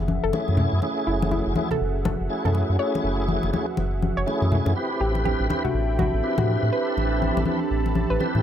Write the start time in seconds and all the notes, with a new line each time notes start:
Already playing: F#1 C#4 F#4 G#4 B4 E5 F#5
0.08 high conga
0.23 F#1 A4
0.33 A3 C#4 E4 G#4, muted conga
0.48 F#2, high conga
0.57 low conga
0.73 F#2
0.82 A3 C#4 E4 G#4, muted conga
1.07 F#1 E4
1.22 muted conga
1.31 E4, high conga
1.46 F#1
1.56 A3 C#4 E4 G#4, high conga
1.71 A4, muted conga, low conga
1.81 F#1
2.05 A4, muted conga, high conga, low conga
2.20 F#1
2.30 A3 C#4 E4 G#4
2.45 F#2 A4, high conga, low conga
2.55 muted conga
2.70 F#2
2.78 A3 C#4 E4 G#4 C#5
2.95 muted conga
3.04 F#1
3.28 high conga
3.43 F#1, muted conga
3.53 A3 C#4 E4 G#4, high conga
3.77 F#1, muted conga
4.02 high conga
4.17 F#1 C#5
4.26 A3 C#4 E4 G#4, muted conga
4.42 F#2, high conga
4.52 low conga
4.66 F#2, muted conga
4.75 C4 D4 E4 G4 A4 B4 G5 B5
4.98 A1 G4 E5
5.15 muted conga
5.21 G4
5.25 G4, high conga
5.40 A1
5.49 C4 E4 G4 B4, muted conga, high conga
5.63 C4 F#4, low conga
5.74 A1
5.99 F#4, muted conga, high conga, low conga
6.14 A1
6.23 C4 E4 G4 B4
6.38 A2 F#4, muted conga, high conga, low conga
6.63 A2
6.72 C4 E4 G4 B4 A5
6.97 A1, muted conga
7.22 high conga
7.37 A1, muted conga
7.46 C4 E4 G4 B4, high conga
7.71 A1
7.86 muted conga
7.95 high conga
8.10 A1 B4
8.20 C4 E4 G4 B4, muted conga
8.35 A2, high conga